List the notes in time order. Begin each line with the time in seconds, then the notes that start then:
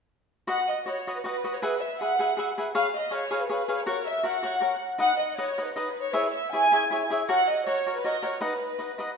0.47 F#4 B4 D#5 F#5
0.68 D#5
0.86 F#4 B4 C#5 D#5 F#5
1.07 F#4 B4 D#5 F#5
1.16 B4
1.24 F#4 B4 D#5 F#5
1.44 F#4 B4 D#5 F#5
1.54 C#5
1.62 G#4 B4 E5 F#5
1.80 E5
1.99 G#4 B4 E5 F#5
2.19 G#4 B4 E5 F#5
2.37 G#4 B4 E5 F#5
2.58 G#4 B4 E5 F#5
2.75 G#4 B4 C#5 F5
2.97 D#5
3.11 G#4 B4 C#5 F5
3.31 G#4 B4 C#5 F5
3.42 B4
3.48 G#4 B4 C#5 F5
3.68 G#4 B4 C#5 F5
3.76 C#5
3.85 F#4 A#4 C#5 F#5
4.07 E5
4.23 F#4 A#4 C#5 F#5
4.43 F#4 A#4 C#5 F#5
4.61 F#4 A#4 C#5 F#5
4.98 D#4 B4 D#5 F#5
5.17 D#5
5.28 D#5
5.36 D#4 B4 C#5 D#5 F#5
5.58 D#4 B4 D#5 F#5
5.64 B4
5.74 D#4 B4 D#5 F#5
6.02 C#5
6.13 E4 G#4 B4 C#5 E5
6.24 B4
6.34 E5
6.52 E4 G#4 C#5 E5 G#5
6.72 E4 G#4 C#5 E5
6.91 E4 G#4 C#5 E5
7.10 E4 G#4 C#5 E5
7.28 F#4 A#4 C#5 F#5
7.49 D#5
7.66 F#4 A#4 C#5 F#5
7.87 F#4 A#4 C#5 F#5
7.96 B4
8.04 F#4 A#4 C#5 D#5 F#5
8.22 F#4 A#4 C#5 F#5
8.41 D#4 B4 D#5 F#5
8.78 D#4 B4 D#5 F#5
8.98 D#4 B4 D#5 F#5